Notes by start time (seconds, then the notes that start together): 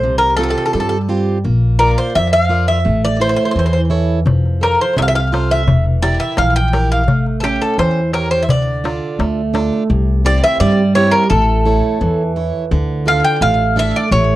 Already playing: C5
0.03 C2 C3
0.18 A#4
0.37 C4 F4 G4 A4
0.43 A4
0.50 A4
0.58 A4
0.66 A4
0.73 G2 G3 A4
0.80 A4
0.89 A4
1.09 C4 F4 G4
1.45 A#1 A#3
1.79 F4 A#4 D5
1.98 C5
2.15 F2 F3 E5
2.33 F5
2.49 F4 A#4 D5
2.68 E5
2.85 A1 A3
3.05 D5
3.20 E4 A4 C5 C#5
3.29 C5
3.36 C5
3.45 C5
3.51 C5
3.56 E2 E3 C5
3.66 C5
3.73 C5
3.90 E4 A4 C#5
4.26 F1 F3, darbuka dum
4.46 darbuka tek
4.61 F4 A4 A#4 C5, darbuka tek
4.81 C5
4.97 C2 C3 E5, darbuka tek
5.02 F5
5.08 E5
5.15 F5
5.32 F4 A4 C5, darbuka tek
5.51 E5, darbuka tek
5.67 E1, darbuka dum
5.85 darbuka tek
6.02 E4 G4 A#4 D5, darbuka tek
6.20 E5
6.37 A#1 E3 F5, darbuka tek
6.56 G5
6.73 E4 G4 A#4, darbuka tek
6.91 F5, darbuka tek
7.08 A1 A3, darbuka dum
7.27 darbuka tek
7.40 C#4 G4 A4, darbuka tek
7.62 A4
7.78 E2 E3 C5, darbuka tek
8.13 G4 A4 A#4 C#5, darbuka tek
8.31 C5
8.43 E5
8.49 D2 D3 D5, darbuka dum
8.67 darbuka tek
8.84 D4 F4 A4, darbuka tek
9.19 D2 A3, darbuka tek
9.54 D4 F4 A4, darbuka tek
9.73 darbuka tek
9.90 C2 C3
10.25 C4 E4 G4 D5
10.44 E5
10.60 G2 G3 D5
10.95 C4 E4 G4 C#5
11.11 A#4
11.30 A1 A3 A4
11.66 E4 A4 C#5
12.01 E2 E3
12.36 E4 A4 C#5
12.71 D2 D3
13.06 D4 F4 A4 F5
13.24 G5
13.41 A1 A3 F5
13.76 D4 F4 A4 E5
13.96 D5
14.11 A1 A3 C#5